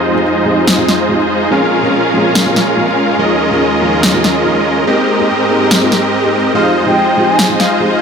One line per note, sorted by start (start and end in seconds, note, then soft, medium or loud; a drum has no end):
0.00 1.50 F2 medium
0.00 0.13 F3 medium
0.00 3.16 F3 medium
0.00 0.13 G#3 medium
0.00 1.49 G#3 medium
0.00 0.13 C4 medium
0.00 0.14 D#4 medium
0.00 1.49 D#4 medium
0.00 1.50 D#4 medium
0.00 1.49 F4 medium
0.00 0.14 G4 medium
0.00 4.83 G#4 medium
0.00 1.49 C5 medium
0.00 1.49 D#5 medium
0.15 0.22 F3 medium
0.15 0.22 G#3 medium
0.15 0.22 C4 medium
0.15 0.23 D#4 medium
0.15 0.23 G4 medium
0.45 0.76 F3 medium
0.45 0.76 G#3 medium
0.45 0.76 C4 medium
0.45 0.76 D#4 medium
0.45 0.77 G4 medium
0.67 snare loud
0.78 0.85 F3 medium
0.78 0.85 G#3 medium
0.78 0.85 C4 medium
0.78 0.86 D#4 medium
0.78 0.86 F4 medium
0.88 snare medium
1.08 1.17 F3 medium
1.08 1.17 G#3 medium
1.08 1.17 C4 medium
1.08 1.17 D#4 medium
1.08 1.18 G4 medium
1.50 3.18 A#2 medium
1.50 1.81 F3 medium
1.50 3.17 G#3 medium
1.50 1.81 A#3 medium
1.50 1.81 C4 medium
1.50 3.17 C#4 medium
1.50 3.18 C#4 medium
1.50 1.81 C#4 medium
1.50 3.17 F4 medium
1.50 1.82 G#4 medium
1.50 3.17 A#4 medium
1.50 3.17 F5 medium
1.83 1.90 F3 medium
1.83 1.90 A#3 medium
1.83 1.90 C4 medium
1.83 1.91 C#4 medium
1.83 1.91 G#4 medium
2.13 2.44 F3 medium
2.13 2.44 A#3 medium
2.13 2.44 C4 medium
2.13 2.44 C#4 medium
2.13 2.45 G#4 medium
2.35 snare loud
2.46 2.53 F3 medium
2.46 2.53 A#3 medium
2.46 2.53 C4 medium
2.46 2.54 C#4 medium
2.46 2.54 G4 medium
2.56 snare medium
2.76 2.85 F3 medium
2.76 2.85 A#3 medium
2.76 2.85 C4 medium
2.76 2.85 C#4 medium
2.76 2.86 G#4 medium
3.18 4.85 D#2 medium
3.18 4.85 C#3 medium
3.18 3.48 F3 medium
3.18 4.85 G#3 medium
3.18 3.49 A#3 medium
3.18 4.85 C#4 medium
3.18 3.49 C#4 medium
3.18 3.49 D#4 medium
3.18 4.85 F4 medium
3.18 3.49 G#4 medium
3.18 4.85 A#4 medium
3.18 4.85 D#5 medium
3.51 3.58 F3 medium
3.51 3.58 A#3 medium
3.51 3.58 C#4 medium
3.51 3.58 D#4 medium
3.51 3.59 G#4 medium
3.81 4.11 F3 medium
3.81 4.12 A#3 medium
3.81 4.12 C#4 medium
3.81 4.12 D#4 medium
3.81 4.12 G#4 medium
4.03 snare loud
4.14 4.21 F3 medium
4.14 4.21 A#3 medium
4.14 4.21 C#4 medium
4.14 4.21 D#4 medium
4.14 4.22 G4 medium
4.24 snare medium
4.44 4.52 F3 medium
4.44 4.53 A#3 medium
4.44 4.53 C#4 medium
4.44 4.53 D#4 medium
4.44 4.53 G#4 medium
4.86 6.53 G#2 medium
4.86 5.16 G#3 medium
4.86 6.53 G#3 medium
4.86 5.17 A#3 medium
4.86 6.53 C4 medium
4.86 5.17 C4 medium
4.86 5.17 D#4 medium
4.86 6.53 G4 medium
4.86 5.17 G4 medium
4.86 6.53 A#4 medium
4.86 6.53 D#5 medium
5.19 5.25 G#3 medium
5.19 5.26 A#3 medium
5.19 5.26 C4 medium
5.19 5.26 D#4 medium
5.19 5.26 G4 medium
5.49 5.79 G#3 medium
5.49 5.79 A#3 medium
5.49 5.80 C4 medium
5.49 5.80 D#4 medium
5.49 5.80 G4 medium
5.71 snare loud
5.82 5.88 G#3 medium
5.82 5.89 A#3 medium
5.82 5.89 C4 medium
5.82 5.89 D#4 medium
5.82 5.89 F4 medium
5.91 5.99 G#3 medium
5.91 5.99 A#3 medium
5.91 6.00 C4 medium
5.91 6.00 D#4 medium
5.91 6.00 G4 medium
5.91 snare medium
6.23 6.34 G#3 medium
6.23 6.35 A#3 medium
6.23 6.35 C4 medium
6.23 6.35 D#4 medium
6.23 6.35 G4 medium
6.54 8.02 F2 medium
6.54 6.84 F3 medium
6.54 8.02 F3 medium
6.54 6.84 G#3 medium
6.54 8.02 G#3 medium
6.54 6.85 C4 medium
6.54 8.02 D#4 medium
6.54 6.85 D#4 medium
6.54 8.02 F4 medium
6.54 6.85 G4 medium
6.54 8.02 G#4 medium
6.54 8.02 C5 medium
6.54 8.02 D#5 medium
6.54 6.77 F5 loud
6.86 6.93 F3 medium
6.86 6.94 G#3 medium
6.86 6.94 C4 medium
6.86 6.94 D#4 medium
6.86 6.94 G4 medium
6.86 7.31 G5 medium
7.17 7.47 F3 medium
7.17 7.47 G#3 medium
7.17 7.48 C4 medium
7.17 7.48 D#4 medium
7.17 7.48 G4 medium
7.29 7.51 G#5 medium
7.39 snare loud
7.49 7.56 F3 medium
7.49 7.56 G#3 medium
7.49 7.57 C4 medium
7.49 7.57 D#4 medium
7.49 7.57 F4 medium
7.60 7.82 F5 medium
7.60 snare medium
7.80 7.88 F3 medium
7.80 7.88 G#3 medium
7.80 7.89 C4 medium
7.80 7.89 D#4 medium
7.80 7.89 G4 medium
7.92 8.02 F5 medium